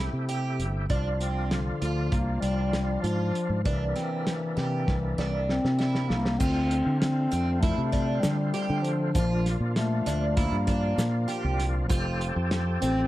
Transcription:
Already playing: C3 A3 E4 G4
0.13 C3
0.29 G4, closed hi-hat
0.59 G1, closed hi-hat
0.89 C2 F3 D4 F4, kick, closed hi-hat
1.20 C4, closed hi-hat
1.50 D3, snare, closed hi-hat
1.82 D2 F4, closed hi-hat
2.10 C2 A#3, kick, closed hi-hat
2.41 C2 G3 D4, closed hi-hat
2.73 snare, closed hi-hat
3.01 G#2 F3 F4, closed hi-hat
3.35 closed hi-hat
3.50 G#2
3.63 C2 C3 E3 A#3 D4, kick, closed hi-hat
3.67 E4
3.96 C4, snare, closed hi-hat
4.27 snare, closed hi-hat
4.57 C3 G4, snare
4.88 C2, kick, snare
5.18 C2 D4, snare
5.49 C4, snare
5.64 C3, snare
5.79 E4, snare
5.95 snare
6.03 C4
6.08 C2 A#3, snare
6.25 snare
6.39 D2 D3 A3 C4 F4, kick, crash, shaker
6.71 closed hi-hat
6.86 D3
7.00 C4, snare, closed hi-hat
7.31 F2 C4, closed hi-hat, shaker
7.60 A3 E4, kick, snare, closed hi-hat
7.78 C3
7.92 D4, kick, snare, closed hi-hat
8.21 D3 G3, snare, closed hi-hat, shaker
8.54 G4, closed hi-hat
8.70 D3
8.82 F3, closed hi-hat
9.13 A#1 A#2 F3 D4 F4, kick, closed hi-hat, shaker
9.46 snare, closed hi-hat
9.60 A#2
9.75 A3, snare, closed hi-hat
10.06 D2 D4, snare, closed hi-hat, shaker
10.36 A#3 E4, kick, closed hi-hat
10.52 G2
10.67 D4, kick, snare, closed hi-hat
10.98 A#2, snare, closed hi-hat, shaker
11.28 G4, closed hi-hat
11.44 C2
11.60 snare, closed hi-hat
11.89 F1 F3 C4 F4 G4 A4, kick, closed hi-hat, shaker
12.21 closed hi-hat
12.36 F2
12.51 snare, closed hi-hat
12.81 A1 C4, closed hi-hat, shaker

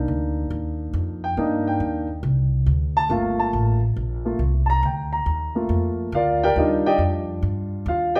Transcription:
Already playing: A#3 D4 D#4
0.08 D2
0.50 D#2
0.93 F2
1.24 G5
1.37 G2 A#3 D4 D#4 D#5
1.67 G5
1.80 D#2
2.23 C2
2.66 D2
2.97 A5
3.09 G1 A3 A#3 F4 F5
3.40 A5
3.53 A1
3.96 A#1
4.25 A3 A#3 F4
4.39 C2
4.66 A5 A#5
4.83 D2 G5
5.13 A#5
5.26 D#2
5.55 A3 A#3 F4
5.69 F2
6.12 D2 F4 A#4 D5 F5
6.43 G4 A#4 D5 G5
6.56 D#2 G3 D4 D#4 F4 G4 A#4 D#5
6.86 G4 D5 D#5 G5
6.98 F2
7.42 G2
7.86 D#2 F4 F5
8.15 G4 D5 D#5 G5

